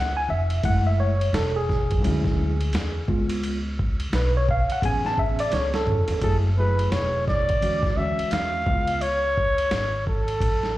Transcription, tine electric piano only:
0, 0, Header, 1, 2, 480
1, 0, Start_track
1, 0, Key_signature, 3, "minor"
1, 0, Tempo, 697674
1, 442, Time_signature, 4, 2, 24, 8
1, 7414, End_track
2, 0, Start_track
2, 0, Title_t, "Tine electric piano"
2, 0, Program_c, 0, 4
2, 0, Note_on_c, 0, 78, 106
2, 115, Note_on_c, 0, 80, 94
2, 117, Note_off_c, 0, 78, 0
2, 198, Note_off_c, 0, 80, 0
2, 207, Note_on_c, 0, 76, 95
2, 433, Note_on_c, 0, 56, 51
2, 440, Note_on_c, 0, 57, 51
2, 441, Note_on_c, 0, 64, 55
2, 448, Note_on_c, 0, 78, 98
2, 451, Note_off_c, 0, 76, 0
2, 596, Note_on_c, 0, 76, 100
2, 597, Note_off_c, 0, 78, 0
2, 687, Note_on_c, 0, 73, 96
2, 688, Note_off_c, 0, 76, 0
2, 778, Note_off_c, 0, 56, 0
2, 781, Note_off_c, 0, 57, 0
2, 782, Note_off_c, 0, 64, 0
2, 925, Note_on_c, 0, 69, 84
2, 931, Note_off_c, 0, 73, 0
2, 1074, Note_on_c, 0, 68, 83
2, 1076, Note_off_c, 0, 69, 0
2, 1399, Note_on_c, 0, 54, 53
2, 1401, Note_on_c, 0, 56, 50
2, 1409, Note_on_c, 0, 61, 50
2, 1411, Note_on_c, 0, 64, 64
2, 1741, Note_off_c, 0, 54, 0
2, 1742, Note_off_c, 0, 56, 0
2, 1746, Note_off_c, 0, 61, 0
2, 1747, Note_off_c, 0, 64, 0
2, 2117, Note_on_c, 0, 56, 56
2, 2123, Note_on_c, 0, 59, 50
2, 2124, Note_on_c, 0, 65, 64
2, 2244, Note_off_c, 0, 68, 0
2, 2460, Note_off_c, 0, 56, 0
2, 2463, Note_off_c, 0, 59, 0
2, 2464, Note_off_c, 0, 65, 0
2, 2857, Note_on_c, 0, 71, 88
2, 2988, Note_off_c, 0, 71, 0
2, 3006, Note_on_c, 0, 73, 91
2, 3092, Note_off_c, 0, 73, 0
2, 3100, Note_on_c, 0, 77, 97
2, 3229, Note_off_c, 0, 77, 0
2, 3247, Note_on_c, 0, 78, 90
2, 3327, Note_on_c, 0, 68, 57
2, 3333, Note_off_c, 0, 78, 0
2, 3333, Note_on_c, 0, 59, 52
2, 3335, Note_on_c, 0, 61, 62
2, 3339, Note_on_c, 0, 80, 98
2, 3482, Note_on_c, 0, 81, 100
2, 3483, Note_off_c, 0, 80, 0
2, 3562, Note_off_c, 0, 81, 0
2, 3571, Note_on_c, 0, 76, 99
2, 3716, Note_on_c, 0, 74, 95
2, 3719, Note_off_c, 0, 76, 0
2, 3808, Note_off_c, 0, 74, 0
2, 3810, Note_on_c, 0, 73, 95
2, 3955, Note_on_c, 0, 69, 83
2, 3958, Note_off_c, 0, 73, 0
2, 4257, Note_off_c, 0, 68, 0
2, 4260, Note_off_c, 0, 59, 0
2, 4261, Note_off_c, 0, 61, 0
2, 4261, Note_off_c, 0, 69, 0
2, 4282, Note_on_c, 0, 54, 66
2, 4287, Note_on_c, 0, 57, 58
2, 4289, Note_on_c, 0, 64, 60
2, 4291, Note_on_c, 0, 68, 75
2, 4452, Note_off_c, 0, 54, 0
2, 4455, Note_off_c, 0, 57, 0
2, 4456, Note_off_c, 0, 64, 0
2, 4457, Note_off_c, 0, 68, 0
2, 4523, Note_on_c, 0, 54, 62
2, 4524, Note_on_c, 0, 57, 55
2, 4532, Note_on_c, 0, 64, 56
2, 4535, Note_on_c, 0, 68, 70
2, 5148, Note_off_c, 0, 54, 0
2, 5149, Note_off_c, 0, 57, 0
2, 5153, Note_off_c, 0, 64, 0
2, 5154, Note_off_c, 0, 68, 0
2, 5237, Note_on_c, 0, 52, 71
2, 5240, Note_on_c, 0, 56, 60
2, 5246, Note_on_c, 0, 61, 67
2, 5250, Note_on_c, 0, 66, 77
2, 5443, Note_off_c, 0, 52, 0
2, 5444, Note_off_c, 0, 56, 0
2, 5447, Note_off_c, 0, 61, 0
2, 5449, Note_off_c, 0, 66, 0
2, 5476, Note_on_c, 0, 52, 68
2, 5481, Note_on_c, 0, 56, 67
2, 5481, Note_on_c, 0, 61, 65
2, 5486, Note_on_c, 0, 66, 79
2, 5935, Note_off_c, 0, 52, 0
2, 5937, Note_off_c, 0, 56, 0
2, 5937, Note_off_c, 0, 61, 0
2, 5940, Note_off_c, 0, 66, 0
2, 5953, Note_on_c, 0, 49, 71
2, 5958, Note_on_c, 0, 56, 65
2, 5960, Note_on_c, 0, 59, 66
2, 5966, Note_on_c, 0, 64, 62
2, 6010, Note_on_c, 0, 65, 78
2, 6019, Note_off_c, 0, 64, 0
2, 6197, Note_off_c, 0, 49, 0
2, 6200, Note_off_c, 0, 56, 0
2, 6201, Note_off_c, 0, 59, 0
2, 6226, Note_off_c, 0, 65, 0
2, 7414, End_track
0, 0, End_of_file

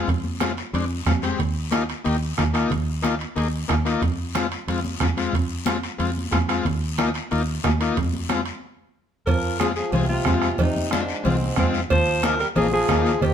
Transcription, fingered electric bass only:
0, 0, Header, 1, 2, 480
1, 0, Start_track
1, 0, Key_signature, -4, "minor"
1, 0, Tempo, 328587
1, 112, Time_signature, 4, 2, 24, 8
1, 19484, End_track
2, 0, Start_track
2, 0, Title_t, "Fingered electric bass"
2, 0, Program_c, 0, 33
2, 111, Note_on_c, 0, 41, 86
2, 881, Note_off_c, 0, 41, 0
2, 1072, Note_on_c, 0, 41, 99
2, 1458, Note_off_c, 0, 41, 0
2, 1547, Note_on_c, 0, 41, 87
2, 1935, Note_off_c, 0, 41, 0
2, 2033, Note_on_c, 0, 39, 85
2, 2803, Note_off_c, 0, 39, 0
2, 3006, Note_on_c, 0, 39, 92
2, 3387, Note_off_c, 0, 39, 0
2, 3477, Note_on_c, 0, 39, 85
2, 3862, Note_off_c, 0, 39, 0
2, 3953, Note_on_c, 0, 39, 86
2, 4723, Note_off_c, 0, 39, 0
2, 4914, Note_on_c, 0, 39, 93
2, 5300, Note_off_c, 0, 39, 0
2, 5397, Note_on_c, 0, 39, 84
2, 5782, Note_off_c, 0, 39, 0
2, 5868, Note_on_c, 0, 41, 84
2, 6640, Note_off_c, 0, 41, 0
2, 6830, Note_on_c, 0, 41, 96
2, 7218, Note_off_c, 0, 41, 0
2, 7308, Note_on_c, 0, 41, 82
2, 7696, Note_off_c, 0, 41, 0
2, 7786, Note_on_c, 0, 41, 78
2, 8559, Note_off_c, 0, 41, 0
2, 8754, Note_on_c, 0, 41, 93
2, 9140, Note_off_c, 0, 41, 0
2, 9233, Note_on_c, 0, 41, 88
2, 9619, Note_off_c, 0, 41, 0
2, 9714, Note_on_c, 0, 39, 87
2, 10484, Note_off_c, 0, 39, 0
2, 10692, Note_on_c, 0, 39, 92
2, 11070, Note_off_c, 0, 39, 0
2, 11164, Note_on_c, 0, 39, 88
2, 11545, Note_off_c, 0, 39, 0
2, 11643, Note_on_c, 0, 41, 91
2, 12408, Note_off_c, 0, 41, 0
2, 13540, Note_on_c, 0, 41, 88
2, 14313, Note_off_c, 0, 41, 0
2, 14495, Note_on_c, 0, 36, 90
2, 14886, Note_off_c, 0, 36, 0
2, 14979, Note_on_c, 0, 41, 98
2, 15368, Note_off_c, 0, 41, 0
2, 15458, Note_on_c, 0, 41, 86
2, 16232, Note_off_c, 0, 41, 0
2, 16431, Note_on_c, 0, 36, 84
2, 16815, Note_off_c, 0, 36, 0
2, 16903, Note_on_c, 0, 41, 101
2, 17290, Note_off_c, 0, 41, 0
2, 17390, Note_on_c, 0, 39, 85
2, 18158, Note_off_c, 0, 39, 0
2, 18349, Note_on_c, 0, 34, 82
2, 18733, Note_off_c, 0, 34, 0
2, 18824, Note_on_c, 0, 39, 99
2, 19210, Note_off_c, 0, 39, 0
2, 19304, Note_on_c, 0, 39, 92
2, 19484, Note_off_c, 0, 39, 0
2, 19484, End_track
0, 0, End_of_file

